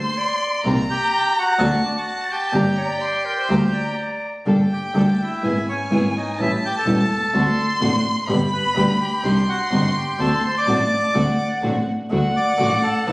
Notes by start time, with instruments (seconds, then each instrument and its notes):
Already playing: clarinet C5, violin C6
0.17 clarinet D5
0.64 double bass C2, nylon-string guitar C3 D#3 A#3 C4 G4, string section C4 D#4 A#4, violin A#5
0.90 bandoneon G4 G5
1.39 bandoneon F#4 F#5
1.59 double bass D2, nylon-string guitar D3 A3 C4 F#4, string section C4 D4 F#4, violin A5
1.85 bandoneon D4 D5
1.96 bandoneon F#4 F#5
2.08 violin A5
2.31 bandoneon G4 G5
2.53 double bass G1, nylon-string guitar D3 G3 A#3 D4 G4, string section A#3 D4 G4, violin A#5
2.77 clarinet D5
3.01 violin C6
3.25 clarinet A#4
3.38 clarinet C5
3.49 double bass D2, nylon-string guitar D3 G3 A#3 D4 G4, string section A#3 D4 G4, violin A#5
3.74 clarinet D5
4.46 double bass G1, nylon-string guitar D3 G3 A#3 D4 A4, string section A#3 G4 A4, violin G5
4.73 bandoneon G4 G5
4.94 double bass D2, nylon-string guitar D3 G3 A#3 D4 A4, string section A#3 G4 A4
5.22 bandoneon E4 E5
5.42 double bass G#1, nylon-string guitar G#3 B3 E4, string section B3 E4 G#4, violin G#5
5.69 bandoneon C#4 C#5
5.90 double bass G#1, nylon-string guitar G#3 B3 E4, string section B3 E4 G#4
6.17 bandoneon D#4 D#5
6.38 double bass A1, nylon-string guitar E3 G3 C#4 E4, string section A3 C#4 G4, violin A5
6.42 bandoneon E4 E5
6.65 bandoneon G4 G5
6.77 bandoneon A4 A5
6.85 double bass E1, nylon-string guitar E3 G3 C#4 E4, string section A3 C#4 G4
7.33 double bass D2, nylon-string guitar D3 A3 C4 F#4, string section C4 D4 F#4, violin C6
7.80 double bass A1, nylon-string guitar D3 A3 C4 F#4, string section C4 D4 F#4
8.28 double bass G1, nylon-string guitar B2 D3 G3 B3 G4, string section B3 D4 G4, violin B5
8.53 bandoneon B4 B5
8.75 double bass D2, nylon-string guitar B2 D3 G3 B3 G4, string section B3 D4 G4
9.01 bandoneon G4 G5
9.23 double bass C2, nylon-string guitar C3 D#3 G3 D4 G4, string section C4 D4 D#4, violin C6
9.49 bandoneon F#4 F#5
9.71 double bass G1, nylon-string guitar C3 D#3 G3 D4 G4, string section C4 D4 D#4
9.96 bandoneon G4 G5
10.19 double bass D2, nylon-string guitar D3 A3 C4 F#4, string section C4 D4 F#4, bandoneon A4 A5, violin C6
10.45 bandoneon C5 C6
10.58 bandoneon D5 D6
10.66 double bass A1, nylon-string guitar D3 A3 C4 F#4, string section C4 D4 F#4, violin A5
11.14 double bass D2, nylon-string guitar D3 A3 C4 F#4, string section C4 D4 F#4, violin F#5
11.62 double bass A1, nylon-string guitar D3 A3 C4 F#4, string section C4 D4 F#4
12.10 double bass D2, nylon-string guitar D3 A3 D4 F#4, string section A3 D4 F#4, violin F#5
12.36 bandoneon D5 D6
12.58 double bass A1, nylon-string guitar D3 A3 D4 F#4, string section A3 D4 F#4
12.83 bandoneon A4 A5
13.07 double bass C#2, nylon-string guitar C#3 E3 A3 C#4 E4, string section A3 C#4 E4, violin A5